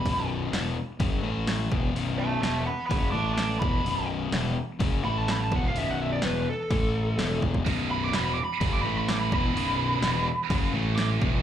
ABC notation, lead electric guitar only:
X:1
M:4/4
L:1/16
Q:1/4=126
K:A
V:1 name="Lead electric guitar"
b2 z12 z2 | z2 [ea]2 [ea]2 [fb]2 [fb]2 [ad']2 [ad']2 b2- | b2 z8 b a b a f ^e | e f e d B2 A8 z2 |
z2 b d' b b d' b b d' b b d' b b2- | b8- b2 z2 d' z3 |]